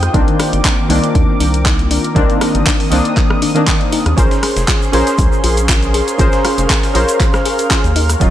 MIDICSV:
0, 0, Header, 1, 7, 480
1, 0, Start_track
1, 0, Tempo, 504202
1, 136, Time_signature, 4, 2, 24, 8
1, 7903, End_track
2, 0, Start_track
2, 0, Title_t, "Analog synth pad"
2, 0, Program_c, 0, 89
2, 0, Note_on_c, 0, 56, 77
2, 0, Note_on_c, 0, 79, 69
2, 0, Note_on_c, 0, 87, 83
2, 98, Note_off_c, 0, 79, 0
2, 98, Note_off_c, 0, 87, 0
2, 99, Note_off_c, 0, 56, 0
2, 135, Note_on_c, 0, 70, 77
2, 136, Note_on_c, 0, 86, 85
2, 2037, Note_off_c, 0, 86, 0
2, 2056, Note_on_c, 0, 87, 88
2, 3938, Note_off_c, 0, 70, 0
2, 3957, Note_off_c, 0, 87, 0
2, 3977, Note_on_c, 0, 61, 71
2, 3977, Note_on_c, 0, 68, 80
2, 3977, Note_on_c, 0, 84, 84
2, 7540, Note_off_c, 0, 61, 0
2, 7541, Note_off_c, 0, 68, 0
2, 7541, Note_off_c, 0, 84, 0
2, 7576, Note_on_c, 0, 54, 79
2, 7576, Note_on_c, 0, 77, 71
2, 7576, Note_on_c, 0, 85, 85
2, 7903, Note_off_c, 0, 54, 0
2, 7903, Note_off_c, 0, 77, 0
2, 7903, Note_off_c, 0, 85, 0
2, 7903, End_track
3, 0, Start_track
3, 0, Title_t, "Ambient pad"
3, 0, Program_c, 1, 92
3, 0, Note_on_c, 1, 65, 74
3, 0, Note_on_c, 1, 72, 75
3, 0, Note_on_c, 1, 79, 87
3, 1534, Note_off_c, 1, 72, 0
3, 1680, Note_off_c, 1, 65, 0
3, 1680, Note_off_c, 1, 79, 0
3, 3977, Note_on_c, 1, 70, 76
3, 4466, Note_on_c, 1, 77, 86
3, 7577, Note_on_c, 1, 63, 82
3, 7903, Note_off_c, 1, 63, 0
3, 7903, Note_off_c, 1, 70, 0
3, 7903, Note_off_c, 1, 77, 0
3, 7903, End_track
4, 0, Start_track
4, 0, Title_t, "Synth arpeggio sound"
4, 0, Program_c, 2, 84
4, 136, Note_on_c, 2, 63, 84
4, 204, Note_off_c, 2, 63, 0
4, 376, Note_on_c, 2, 62, 80
4, 478, Note_off_c, 2, 62, 0
4, 616, Note_on_c, 2, 62, 83
4, 657, Note_off_c, 2, 62, 0
4, 856, Note_on_c, 2, 63, 78
4, 924, Note_off_c, 2, 63, 0
4, 1097, Note_on_c, 2, 62, 81
4, 1199, Note_off_c, 2, 62, 0
4, 1336, Note_on_c, 2, 62, 75
4, 1377, Note_off_c, 2, 62, 0
4, 1576, Note_on_c, 2, 63, 82
4, 1644, Note_off_c, 2, 63, 0
4, 1816, Note_on_c, 2, 62, 78
4, 1918, Note_off_c, 2, 62, 0
4, 2056, Note_on_c, 2, 62, 80
4, 2097, Note_off_c, 2, 62, 0
4, 2297, Note_on_c, 2, 63, 78
4, 2365, Note_off_c, 2, 63, 0
4, 2537, Note_on_c, 2, 62, 80
4, 2639, Note_off_c, 2, 62, 0
4, 2776, Note_on_c, 2, 62, 77
4, 2817, Note_off_c, 2, 62, 0
4, 3016, Note_on_c, 2, 63, 81
4, 3084, Note_off_c, 2, 63, 0
4, 3256, Note_on_c, 2, 62, 75
4, 3358, Note_off_c, 2, 62, 0
4, 3496, Note_on_c, 2, 62, 81
4, 3537, Note_off_c, 2, 62, 0
4, 3736, Note_on_c, 2, 63, 77
4, 3804, Note_off_c, 2, 63, 0
4, 3976, Note_on_c, 2, 65, 85
4, 4017, Note_off_c, 2, 65, 0
4, 4216, Note_on_c, 2, 68, 77
4, 4284, Note_off_c, 2, 68, 0
4, 4456, Note_on_c, 2, 65, 83
4, 4558, Note_off_c, 2, 65, 0
4, 4696, Note_on_c, 2, 65, 76
4, 4737, Note_off_c, 2, 65, 0
4, 4936, Note_on_c, 2, 68, 79
4, 5004, Note_off_c, 2, 68, 0
4, 5176, Note_on_c, 2, 65, 75
4, 5278, Note_off_c, 2, 65, 0
4, 5416, Note_on_c, 2, 65, 80
4, 5457, Note_off_c, 2, 65, 0
4, 5656, Note_on_c, 2, 68, 77
4, 5725, Note_off_c, 2, 68, 0
4, 5896, Note_on_c, 2, 65, 84
4, 5998, Note_off_c, 2, 65, 0
4, 6136, Note_on_c, 2, 65, 78
4, 6177, Note_off_c, 2, 65, 0
4, 6376, Note_on_c, 2, 68, 81
4, 6444, Note_off_c, 2, 68, 0
4, 6616, Note_on_c, 2, 65, 77
4, 6718, Note_off_c, 2, 65, 0
4, 6856, Note_on_c, 2, 65, 79
4, 6897, Note_off_c, 2, 65, 0
4, 7096, Note_on_c, 2, 68, 73
4, 7164, Note_off_c, 2, 68, 0
4, 7336, Note_on_c, 2, 65, 80
4, 7438, Note_off_c, 2, 65, 0
4, 7576, Note_on_c, 2, 63, 80
4, 7617, Note_off_c, 2, 63, 0
4, 7816, Note_on_c, 2, 65, 84
4, 7884, Note_off_c, 2, 65, 0
4, 7903, End_track
5, 0, Start_track
5, 0, Title_t, "Synth keys"
5, 0, Program_c, 3, 88
5, 125, Note_on_c, 3, 51, 88
5, 132, Note_on_c, 3, 58, 77
5, 140, Note_on_c, 3, 60, 79
5, 147, Note_on_c, 3, 62, 99
5, 824, Note_off_c, 3, 51, 0
5, 828, Note_off_c, 3, 58, 0
5, 832, Note_off_c, 3, 60, 0
5, 835, Note_off_c, 3, 62, 0
5, 845, Note_on_c, 3, 51, 90
5, 852, Note_on_c, 3, 58, 83
5, 860, Note_on_c, 3, 60, 80
5, 867, Note_on_c, 3, 62, 99
5, 2024, Note_off_c, 3, 51, 0
5, 2028, Note_off_c, 3, 58, 0
5, 2032, Note_off_c, 3, 60, 0
5, 2035, Note_off_c, 3, 62, 0
5, 2045, Note_on_c, 3, 51, 96
5, 2053, Note_on_c, 3, 58, 88
5, 2060, Note_on_c, 3, 60, 89
5, 2068, Note_on_c, 3, 62, 108
5, 2744, Note_off_c, 3, 51, 0
5, 2748, Note_off_c, 3, 58, 0
5, 2752, Note_off_c, 3, 60, 0
5, 2756, Note_off_c, 3, 62, 0
5, 2765, Note_on_c, 3, 51, 86
5, 2773, Note_on_c, 3, 58, 80
5, 2780, Note_on_c, 3, 60, 78
5, 2788, Note_on_c, 3, 62, 96
5, 3354, Note_off_c, 3, 51, 0
5, 3358, Note_off_c, 3, 58, 0
5, 3362, Note_off_c, 3, 60, 0
5, 3366, Note_off_c, 3, 62, 0
5, 3375, Note_on_c, 3, 51, 90
5, 3382, Note_on_c, 3, 58, 81
5, 3390, Note_on_c, 3, 60, 81
5, 3397, Note_on_c, 3, 62, 101
5, 3944, Note_off_c, 3, 51, 0
5, 3948, Note_off_c, 3, 58, 0
5, 3952, Note_off_c, 3, 60, 0
5, 3955, Note_off_c, 3, 62, 0
5, 3965, Note_on_c, 3, 61, 85
5, 3973, Note_on_c, 3, 68, 78
5, 3980, Note_on_c, 3, 70, 78
5, 3988, Note_on_c, 3, 72, 97
5, 4664, Note_off_c, 3, 61, 0
5, 4668, Note_off_c, 3, 68, 0
5, 4672, Note_off_c, 3, 70, 0
5, 4676, Note_off_c, 3, 72, 0
5, 4685, Note_on_c, 3, 61, 88
5, 4693, Note_on_c, 3, 68, 80
5, 4700, Note_on_c, 3, 70, 82
5, 4708, Note_on_c, 3, 72, 100
5, 5864, Note_off_c, 3, 61, 0
5, 5868, Note_off_c, 3, 68, 0
5, 5872, Note_off_c, 3, 70, 0
5, 5875, Note_off_c, 3, 72, 0
5, 5885, Note_on_c, 3, 61, 96
5, 5893, Note_on_c, 3, 68, 88
5, 5900, Note_on_c, 3, 70, 90
5, 5908, Note_on_c, 3, 72, 107
5, 6584, Note_off_c, 3, 61, 0
5, 6588, Note_off_c, 3, 68, 0
5, 6592, Note_off_c, 3, 70, 0
5, 6596, Note_off_c, 3, 72, 0
5, 6605, Note_on_c, 3, 61, 88
5, 6613, Note_on_c, 3, 68, 77
5, 6620, Note_on_c, 3, 70, 79
5, 6628, Note_on_c, 3, 72, 95
5, 7304, Note_off_c, 3, 61, 0
5, 7308, Note_off_c, 3, 68, 0
5, 7312, Note_off_c, 3, 70, 0
5, 7316, Note_off_c, 3, 72, 0
5, 7331, Note_on_c, 3, 61, 70
5, 7335, Note_on_c, 3, 68, 65
5, 7338, Note_on_c, 3, 70, 64
5, 7342, Note_on_c, 3, 72, 77
5, 7467, Note_off_c, 3, 61, 0
5, 7469, Note_off_c, 3, 68, 0
5, 7471, Note_off_c, 3, 70, 0
5, 7473, Note_off_c, 3, 72, 0
5, 7805, Note_on_c, 3, 54, 85
5, 7813, Note_on_c, 3, 61, 80
5, 7820, Note_on_c, 3, 63, 82
5, 7828, Note_on_c, 3, 65, 97
5, 7903, Note_off_c, 3, 54, 0
5, 7903, Note_off_c, 3, 61, 0
5, 7903, Note_off_c, 3, 63, 0
5, 7903, Note_off_c, 3, 65, 0
5, 7903, End_track
6, 0, Start_track
6, 0, Title_t, "Analog synth bass"
6, 0, Program_c, 4, 38
6, 136, Note_on_c, 4, 36, 95
6, 228, Note_off_c, 4, 36, 0
6, 506, Note_on_c, 4, 31, 96
6, 584, Note_off_c, 4, 31, 0
6, 856, Note_on_c, 4, 36, 101
6, 948, Note_off_c, 4, 36, 0
6, 1096, Note_on_c, 4, 39, 89
6, 1188, Note_off_c, 4, 39, 0
6, 1336, Note_on_c, 4, 36, 79
6, 1885, Note_off_c, 4, 36, 0
6, 2056, Note_on_c, 4, 36, 95
6, 2148, Note_off_c, 4, 36, 0
6, 2426, Note_on_c, 4, 31, 97
6, 2504, Note_off_c, 4, 31, 0
6, 2776, Note_on_c, 4, 36, 99
6, 2868, Note_off_c, 4, 36, 0
6, 3866, Note_on_c, 4, 39, 96
6, 3944, Note_off_c, 4, 39, 0
6, 3976, Note_on_c, 4, 34, 92
6, 4068, Note_off_c, 4, 34, 0
6, 4346, Note_on_c, 4, 29, 96
6, 4424, Note_off_c, 4, 29, 0
6, 4696, Note_on_c, 4, 34, 100
6, 4788, Note_off_c, 4, 34, 0
6, 4936, Note_on_c, 4, 37, 86
6, 5028, Note_off_c, 4, 37, 0
6, 5176, Note_on_c, 4, 34, 83
6, 5725, Note_off_c, 4, 34, 0
6, 5896, Note_on_c, 4, 34, 96
6, 5988, Note_off_c, 4, 34, 0
6, 6266, Note_on_c, 4, 29, 98
6, 6344, Note_off_c, 4, 29, 0
6, 6617, Note_on_c, 4, 34, 103
6, 6708, Note_off_c, 4, 34, 0
6, 7465, Note_on_c, 4, 39, 99
6, 7765, Note_off_c, 4, 39, 0
6, 7816, Note_on_c, 4, 27, 95
6, 7903, Note_off_c, 4, 27, 0
6, 7903, End_track
7, 0, Start_track
7, 0, Title_t, "Drums"
7, 26, Note_on_c, 9, 37, 55
7, 26, Note_on_c, 9, 42, 50
7, 121, Note_off_c, 9, 37, 0
7, 121, Note_off_c, 9, 42, 0
7, 136, Note_on_c, 9, 36, 121
7, 136, Note_on_c, 9, 42, 64
7, 231, Note_off_c, 9, 36, 0
7, 232, Note_off_c, 9, 42, 0
7, 266, Note_on_c, 9, 42, 33
7, 361, Note_off_c, 9, 42, 0
7, 376, Note_on_c, 9, 37, 75
7, 376, Note_on_c, 9, 46, 108
7, 472, Note_off_c, 9, 37, 0
7, 472, Note_off_c, 9, 46, 0
7, 506, Note_on_c, 9, 42, 50
7, 601, Note_off_c, 9, 42, 0
7, 616, Note_on_c, 9, 36, 105
7, 616, Note_on_c, 9, 42, 65
7, 619, Note_on_c, 9, 39, 119
7, 711, Note_off_c, 9, 42, 0
7, 712, Note_off_c, 9, 36, 0
7, 714, Note_off_c, 9, 39, 0
7, 856, Note_on_c, 9, 46, 105
7, 951, Note_off_c, 9, 46, 0
7, 986, Note_on_c, 9, 42, 50
7, 1081, Note_off_c, 9, 42, 0
7, 1096, Note_on_c, 9, 36, 120
7, 1096, Note_on_c, 9, 42, 60
7, 1191, Note_off_c, 9, 42, 0
7, 1192, Note_off_c, 9, 36, 0
7, 1336, Note_on_c, 9, 46, 103
7, 1432, Note_off_c, 9, 46, 0
7, 1466, Note_on_c, 9, 42, 48
7, 1561, Note_off_c, 9, 42, 0
7, 1576, Note_on_c, 9, 36, 106
7, 1577, Note_on_c, 9, 42, 61
7, 1580, Note_on_c, 9, 39, 117
7, 1672, Note_off_c, 9, 36, 0
7, 1672, Note_off_c, 9, 42, 0
7, 1675, Note_off_c, 9, 39, 0
7, 1706, Note_on_c, 9, 42, 35
7, 1801, Note_off_c, 9, 42, 0
7, 1817, Note_on_c, 9, 46, 108
7, 1912, Note_off_c, 9, 46, 0
7, 1946, Note_on_c, 9, 42, 49
7, 2041, Note_off_c, 9, 42, 0
7, 2056, Note_on_c, 9, 36, 120
7, 2057, Note_on_c, 9, 42, 61
7, 2152, Note_off_c, 9, 36, 0
7, 2152, Note_off_c, 9, 42, 0
7, 2186, Note_on_c, 9, 42, 35
7, 2281, Note_off_c, 9, 42, 0
7, 2296, Note_on_c, 9, 37, 78
7, 2296, Note_on_c, 9, 46, 106
7, 2392, Note_off_c, 9, 37, 0
7, 2392, Note_off_c, 9, 46, 0
7, 2426, Note_on_c, 9, 42, 47
7, 2521, Note_off_c, 9, 42, 0
7, 2536, Note_on_c, 9, 36, 105
7, 2536, Note_on_c, 9, 42, 62
7, 2539, Note_on_c, 9, 39, 116
7, 2632, Note_off_c, 9, 36, 0
7, 2632, Note_off_c, 9, 42, 0
7, 2634, Note_off_c, 9, 39, 0
7, 2666, Note_on_c, 9, 46, 61
7, 2761, Note_off_c, 9, 46, 0
7, 2776, Note_on_c, 9, 46, 103
7, 2871, Note_off_c, 9, 46, 0
7, 2906, Note_on_c, 9, 42, 49
7, 3001, Note_off_c, 9, 42, 0
7, 3016, Note_on_c, 9, 36, 120
7, 3016, Note_on_c, 9, 42, 61
7, 3019, Note_on_c, 9, 39, 58
7, 3111, Note_off_c, 9, 42, 0
7, 3112, Note_off_c, 9, 36, 0
7, 3114, Note_off_c, 9, 39, 0
7, 3146, Note_on_c, 9, 37, 80
7, 3241, Note_off_c, 9, 37, 0
7, 3256, Note_on_c, 9, 46, 100
7, 3351, Note_off_c, 9, 46, 0
7, 3386, Note_on_c, 9, 42, 48
7, 3481, Note_off_c, 9, 42, 0
7, 3496, Note_on_c, 9, 36, 104
7, 3496, Note_on_c, 9, 42, 60
7, 3499, Note_on_c, 9, 39, 111
7, 3591, Note_off_c, 9, 42, 0
7, 3592, Note_off_c, 9, 36, 0
7, 3594, Note_off_c, 9, 39, 0
7, 3626, Note_on_c, 9, 42, 33
7, 3721, Note_off_c, 9, 42, 0
7, 3736, Note_on_c, 9, 46, 107
7, 3831, Note_off_c, 9, 46, 0
7, 3866, Note_on_c, 9, 37, 61
7, 3866, Note_on_c, 9, 42, 47
7, 3961, Note_off_c, 9, 37, 0
7, 3961, Note_off_c, 9, 42, 0
7, 3976, Note_on_c, 9, 36, 119
7, 3976, Note_on_c, 9, 42, 84
7, 3978, Note_on_c, 9, 82, 65
7, 4071, Note_off_c, 9, 42, 0
7, 4072, Note_off_c, 9, 36, 0
7, 4074, Note_off_c, 9, 82, 0
7, 4105, Note_on_c, 9, 38, 54
7, 4106, Note_on_c, 9, 42, 35
7, 4113, Note_on_c, 9, 82, 35
7, 4201, Note_off_c, 9, 38, 0
7, 4201, Note_off_c, 9, 42, 0
7, 4208, Note_off_c, 9, 82, 0
7, 4216, Note_on_c, 9, 37, 80
7, 4216, Note_on_c, 9, 38, 43
7, 4216, Note_on_c, 9, 42, 68
7, 4216, Note_on_c, 9, 46, 104
7, 4311, Note_off_c, 9, 37, 0
7, 4311, Note_off_c, 9, 38, 0
7, 4311, Note_off_c, 9, 42, 0
7, 4311, Note_off_c, 9, 46, 0
7, 4346, Note_on_c, 9, 38, 56
7, 4346, Note_on_c, 9, 42, 49
7, 4347, Note_on_c, 9, 82, 72
7, 4441, Note_off_c, 9, 38, 0
7, 4441, Note_off_c, 9, 42, 0
7, 4443, Note_off_c, 9, 82, 0
7, 4452, Note_on_c, 9, 82, 62
7, 4456, Note_on_c, 9, 36, 105
7, 4456, Note_on_c, 9, 38, 115
7, 4456, Note_on_c, 9, 42, 63
7, 4459, Note_on_c, 9, 39, 110
7, 4547, Note_off_c, 9, 82, 0
7, 4551, Note_off_c, 9, 38, 0
7, 4552, Note_off_c, 9, 36, 0
7, 4552, Note_off_c, 9, 42, 0
7, 4555, Note_off_c, 9, 39, 0
7, 4588, Note_on_c, 9, 82, 39
7, 4683, Note_off_c, 9, 82, 0
7, 4696, Note_on_c, 9, 42, 67
7, 4696, Note_on_c, 9, 46, 97
7, 4791, Note_off_c, 9, 42, 0
7, 4792, Note_off_c, 9, 46, 0
7, 4826, Note_on_c, 9, 38, 46
7, 4826, Note_on_c, 9, 42, 49
7, 4827, Note_on_c, 9, 82, 86
7, 4921, Note_off_c, 9, 38, 0
7, 4921, Note_off_c, 9, 42, 0
7, 4923, Note_off_c, 9, 82, 0
7, 4934, Note_on_c, 9, 82, 64
7, 4936, Note_on_c, 9, 36, 117
7, 4936, Note_on_c, 9, 42, 87
7, 4937, Note_off_c, 9, 42, 0
7, 4937, Note_on_c, 9, 42, 60
7, 5029, Note_off_c, 9, 82, 0
7, 5032, Note_off_c, 9, 36, 0
7, 5032, Note_off_c, 9, 42, 0
7, 5068, Note_on_c, 9, 82, 35
7, 5164, Note_off_c, 9, 82, 0
7, 5176, Note_on_c, 9, 42, 66
7, 5176, Note_on_c, 9, 46, 100
7, 5272, Note_off_c, 9, 42, 0
7, 5272, Note_off_c, 9, 46, 0
7, 5305, Note_on_c, 9, 82, 79
7, 5306, Note_on_c, 9, 42, 51
7, 5400, Note_off_c, 9, 82, 0
7, 5402, Note_off_c, 9, 42, 0
7, 5416, Note_on_c, 9, 36, 101
7, 5416, Note_on_c, 9, 38, 114
7, 5416, Note_on_c, 9, 42, 85
7, 5417, Note_off_c, 9, 42, 0
7, 5417, Note_on_c, 9, 42, 61
7, 5420, Note_on_c, 9, 39, 110
7, 5420, Note_on_c, 9, 82, 72
7, 5511, Note_off_c, 9, 38, 0
7, 5512, Note_off_c, 9, 36, 0
7, 5512, Note_off_c, 9, 42, 0
7, 5515, Note_off_c, 9, 39, 0
7, 5516, Note_off_c, 9, 82, 0
7, 5543, Note_on_c, 9, 82, 37
7, 5546, Note_on_c, 9, 42, 35
7, 5638, Note_off_c, 9, 82, 0
7, 5641, Note_off_c, 9, 42, 0
7, 5656, Note_on_c, 9, 42, 65
7, 5657, Note_on_c, 9, 46, 104
7, 5751, Note_off_c, 9, 42, 0
7, 5752, Note_off_c, 9, 46, 0
7, 5786, Note_on_c, 9, 42, 50
7, 5788, Note_on_c, 9, 82, 75
7, 5881, Note_off_c, 9, 42, 0
7, 5883, Note_off_c, 9, 82, 0
7, 5893, Note_on_c, 9, 82, 66
7, 5896, Note_on_c, 9, 36, 110
7, 5896, Note_on_c, 9, 42, 66
7, 5988, Note_off_c, 9, 82, 0
7, 5992, Note_off_c, 9, 36, 0
7, 5992, Note_off_c, 9, 42, 0
7, 6019, Note_on_c, 9, 82, 35
7, 6026, Note_on_c, 9, 38, 55
7, 6026, Note_on_c, 9, 42, 35
7, 6114, Note_off_c, 9, 82, 0
7, 6121, Note_off_c, 9, 38, 0
7, 6121, Note_off_c, 9, 42, 0
7, 6136, Note_on_c, 9, 38, 45
7, 6136, Note_on_c, 9, 42, 67
7, 6137, Note_on_c, 9, 37, 80
7, 6137, Note_on_c, 9, 46, 100
7, 6232, Note_off_c, 9, 37, 0
7, 6232, Note_off_c, 9, 38, 0
7, 6232, Note_off_c, 9, 42, 0
7, 6232, Note_off_c, 9, 46, 0
7, 6266, Note_on_c, 9, 42, 52
7, 6266, Note_on_c, 9, 82, 71
7, 6361, Note_off_c, 9, 42, 0
7, 6361, Note_off_c, 9, 82, 0
7, 6376, Note_on_c, 9, 36, 100
7, 6376, Note_on_c, 9, 38, 111
7, 6376, Note_on_c, 9, 42, 87
7, 6377, Note_off_c, 9, 42, 0
7, 6377, Note_on_c, 9, 42, 65
7, 6378, Note_on_c, 9, 82, 59
7, 6380, Note_on_c, 9, 39, 113
7, 6471, Note_off_c, 9, 38, 0
7, 6472, Note_off_c, 9, 36, 0
7, 6472, Note_off_c, 9, 42, 0
7, 6473, Note_off_c, 9, 82, 0
7, 6475, Note_off_c, 9, 39, 0
7, 6505, Note_on_c, 9, 82, 37
7, 6506, Note_on_c, 9, 38, 56
7, 6506, Note_on_c, 9, 46, 59
7, 6601, Note_off_c, 9, 38, 0
7, 6601, Note_off_c, 9, 46, 0
7, 6601, Note_off_c, 9, 82, 0
7, 6616, Note_on_c, 9, 42, 67
7, 6617, Note_on_c, 9, 46, 100
7, 6711, Note_off_c, 9, 42, 0
7, 6712, Note_off_c, 9, 46, 0
7, 6744, Note_on_c, 9, 82, 81
7, 6746, Note_on_c, 9, 42, 51
7, 6839, Note_off_c, 9, 82, 0
7, 6841, Note_off_c, 9, 42, 0
7, 6856, Note_on_c, 9, 36, 114
7, 6856, Note_on_c, 9, 42, 87
7, 6857, Note_off_c, 9, 42, 0
7, 6857, Note_on_c, 9, 42, 64
7, 6857, Note_on_c, 9, 82, 58
7, 6860, Note_on_c, 9, 39, 57
7, 6952, Note_off_c, 9, 36, 0
7, 6952, Note_off_c, 9, 42, 0
7, 6952, Note_off_c, 9, 82, 0
7, 6955, Note_off_c, 9, 39, 0
7, 6982, Note_on_c, 9, 82, 33
7, 6986, Note_on_c, 9, 37, 86
7, 6986, Note_on_c, 9, 38, 39
7, 7078, Note_off_c, 9, 82, 0
7, 7081, Note_off_c, 9, 37, 0
7, 7081, Note_off_c, 9, 38, 0
7, 7096, Note_on_c, 9, 42, 69
7, 7097, Note_on_c, 9, 46, 99
7, 7192, Note_off_c, 9, 42, 0
7, 7192, Note_off_c, 9, 46, 0
7, 7222, Note_on_c, 9, 82, 74
7, 7226, Note_on_c, 9, 42, 52
7, 7317, Note_off_c, 9, 82, 0
7, 7322, Note_off_c, 9, 42, 0
7, 7336, Note_on_c, 9, 36, 96
7, 7336, Note_on_c, 9, 38, 115
7, 7336, Note_on_c, 9, 42, 87
7, 7337, Note_off_c, 9, 42, 0
7, 7337, Note_on_c, 9, 42, 65
7, 7339, Note_on_c, 9, 82, 58
7, 7340, Note_on_c, 9, 39, 109
7, 7431, Note_off_c, 9, 38, 0
7, 7432, Note_off_c, 9, 36, 0
7, 7432, Note_off_c, 9, 42, 0
7, 7435, Note_off_c, 9, 39, 0
7, 7435, Note_off_c, 9, 82, 0
7, 7466, Note_on_c, 9, 42, 35
7, 7469, Note_on_c, 9, 82, 33
7, 7561, Note_off_c, 9, 42, 0
7, 7564, Note_off_c, 9, 82, 0
7, 7576, Note_on_c, 9, 42, 69
7, 7576, Note_on_c, 9, 46, 99
7, 7671, Note_off_c, 9, 42, 0
7, 7672, Note_off_c, 9, 46, 0
7, 7705, Note_on_c, 9, 82, 81
7, 7706, Note_on_c, 9, 37, 63
7, 7706, Note_on_c, 9, 42, 51
7, 7800, Note_off_c, 9, 82, 0
7, 7801, Note_off_c, 9, 37, 0
7, 7801, Note_off_c, 9, 42, 0
7, 7816, Note_on_c, 9, 42, 85
7, 7816, Note_on_c, 9, 82, 64
7, 7817, Note_off_c, 9, 42, 0
7, 7817, Note_on_c, 9, 36, 109
7, 7817, Note_on_c, 9, 42, 67
7, 7903, Note_off_c, 9, 36, 0
7, 7903, Note_off_c, 9, 42, 0
7, 7903, Note_off_c, 9, 82, 0
7, 7903, End_track
0, 0, End_of_file